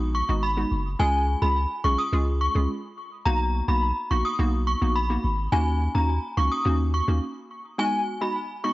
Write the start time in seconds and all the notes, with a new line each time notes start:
Already playing: A#1 G#3 B3 D#4 F#4
0.15 C#6
0.29 G#1 G#3 B3 D#4 F#4
0.43 B5
0.57 G#3 B3 D#4 F#4
0.71 F#1
0.99 C#2 G#3 C#4 F4 G#4 G#5
1.42 C#2 G#3 C#4 F4 G#4 B5
1.84 B1 G#3 C#4 F4 G#4 C#6
1.98 D#6
2.13 C#2 G#3 C#4 F4 G#4
2.41 C#6
2.55 C#2 G#3 C#4 F4 G#4
3.26 B1 A#3 B3 D#4 F#4 A#5
3.68 B1 A#3 B3 D#4 F#4 B5
4.11 A#1 A#3 B3 D#4 F#4 C#6
4.25 D#6
4.39 B1 A#3 B3 D#4 F#4
4.67 C#6
4.81 A#1 A#3 B3 D#4 F#4
4.96 B5
5.10 A#3 B3 D#4 F#4
5.24 G#1
5.52 D#2 A#3 C#4 D#4 F#4 G#5
5.95 D#2 A#3 C#4 D#4 F#4 A#5
6.37 C#2 A#3 C#4 D#4 F#4 C#6
6.52 D#6
6.65 D#2 A#3 C#4 D#4 F#4
6.94 C#6
7.08 D#2 A#3 C#4 D#4 F#4
7.78 G#3 B3 D#4 F#4 G#5
8.21 G#3 B3 D#4 F#4 B5
8.64 G#3 B3 D#4 F#4 C#6